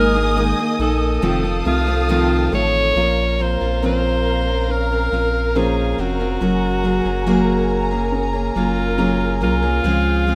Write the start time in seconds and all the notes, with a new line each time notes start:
Already playing: G#1 G#3 A#3 D#4 G#4 A#4 D#5 G#5 D#6
0.15 A#3 D#4 G#4
0.36 D#3 G#3 A#3 D#4 G#4
0.57 A#3 D#4 G#4
0.79 A#1 A#3 D#4 A4
1.22 F1 F2 C3 D#3 F3 A3 C4 A4 F5 A5 D#6
1.43 D#3 A3 C4 A4
1.65 C2 C3 D#3 A3 C4 F4 A4
1.87 D#3 A3 C4 A4
2.08 F2 C3 D#3 F3 A3 C4 F4 A4
2.52 A1 D#3 A3 A4 C#5
2.95 A#1 A#2 F3 A#3 C#4 F4 A#4 F5 A#5
3.39 F3 C4 C#4 F4 C5
3.61 A#1 C4 C#4 F4
3.82 A#2 F3 C4 C#4 F4 A#4 C5
4.48 C4 C#4 F4
4.68 C#4 A#4 C5
4.91 C4 C#4 F4
5.12 A#1 F3 C4 C#4 F4
5.55 A#2 F3 C4 C#4 F4 G#4 A#4 C5
5.98 F1 F3 C4 C#4 F4 F#4
6.19 C4 C#4 F4
6.40 F#1 F#3 A#3 C#4 G#4 A#4 G#5 A#5
6.83 F#3 A#3 C#4 G#4
7.05 F#1 A#3 C#4 G#4
7.26 F#3 A#3 C#4 F#4 G#4 A#4
7.91 A#3 C#4 G#4
8.12 C#4 G#4 A#4
8.33 A#3 C#4 G#4
8.55 F#1 F#3 A#3 C#4 F4 G#4
8.98 F#3 A#3 C#4 G#4 A#4
9.41 C2 F#3 A#3 C#4 F4 G#4
9.62 A#3 C#4 G#4
9.83 C#2 C#3 F3 G#3 C4 G#4 F5
10.27 F3 G#3 C4 G#4